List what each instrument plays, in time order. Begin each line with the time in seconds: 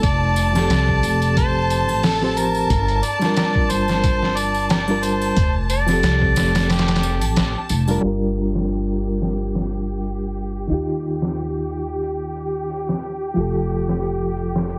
Already playing: violin section A5
0.03 upright bass F1, harmonica D5, kick, closed hi-hat, tambourine
0.36 closed hi-hat, tambourine
0.53 reed electric piano F3 C4, snare, tambourine, triangle
0.57 reed electric piano G4 A4
0.70 upright bass C2, snare, closed hi-hat, tambourine
0.88 kick
1.03 upright bass F1, closed hi-hat, tambourine
1.22 closed hi-hat, tambourine
1.37 harmonica C5, kick, closed hi-hat, tambourine
1.70 closed hi-hat, tambourine
1.88 upright bass A1, tambourine, triangle
2.03 harmonica A4, snare, open hi-hat, tambourine
2.21 reed electric piano F3 C4 G4 C5, snare
2.37 harmonica A#4, closed hi-hat, tambourine
2.55 tambourine
2.70 upright bass G1, kick, closed hi-hat, tambourine
2.88 closed hi-hat
3.03 harmonica D5, closed hi-hat, tambourine
3.19 reed electric piano G3 D4, snare, tambourine
3.23 reed electric piano F4 A#4
3.36 harmonica G4 A#4 D5, snare, closed hi-hat, tambourine
3.55 kick
3.70 upright bass G1, harmonica C5, closed hi-hat, tambourine
3.88 snare, tambourine
4.04 kick, closed hi-hat, tambourine
4.23 snare
4.37 harmonica D5, closed hi-hat, tambourine
4.54 tambourine
4.69 harmonica G4 A#4 D5, snare, closed hi-hat, tambourine
4.88 reed electric piano G3 D4 F4 A#4, triangle
5.03 harmonica C5, closed hi-hat, tambourine
5.22 tambourine, triangle
5.37 upright bass F1, kick, closed hi-hat, tambourine
5.70 harmonica D5, closed hi-hat, tambourine
5.86 reed electric piano F3 C4, snare, tambourine, triangle
5.91 reed electric piano G4 A4
6.03 upright bass C2, snare, closed hi-hat, tambourine
6.22 kick
6.36 upright bass F1, snare, closed hi-hat, tambourine
6.55 snare, closed hi-hat, tambourine
6.70 harmonica G4, snare, closed hi-hat, tambourine
6.79 snare, closed hi-hat
6.88 snare, closed hi-hat
6.96 snare, closed hi-hat
7.03 tambourine
7.21 upright bass A1, closed hi-hat, tambourine, triangle
7.36 upright bass A1, snare, closed hi-hat, tambourine
7.69 upright bass F1, closed hi-hat, tambourine
7.88 reed electric piano G3 D4 F4 A#4, tambourine, triangle
8.01 upright bass G1, reed electric piano G3 D4, violin section G4, closed hi-hat
8.05 reed electric piano F4 A#4
8.22 closed hi-hat
8.36 closed hi-hat
8.55 snare
8.69 closed hi-hat
9.03 closed hi-hat
9.22 snare
9.36 closed hi-hat
9.55 snare
9.70 closed hi-hat
10.03 closed hi-hat
10.36 closed hi-hat
10.67 upright bass D#2, reed electric piano D#3 D#4, closed hi-hat
10.72 reed electric piano F4 G4
11.03 closed hi-hat
11.22 snare
11.36 closed hi-hat
11.70 closed hi-hat
11.88 closed hi-hat
12.03 closed hi-hat
12.36 closed hi-hat
12.70 open hi-hat
12.89 snare
13.03 closed hi-hat
13.34 upright bass F1, reed electric piano F3 F4, closed hi-hat
13.38 reed electric piano G4 A4
13.55 closed hi-hat
13.70 closed hi-hat
13.89 snare
14.03 closed hi-hat
14.37 closed hi-hat
14.56 snare
14.70 closed hi-hat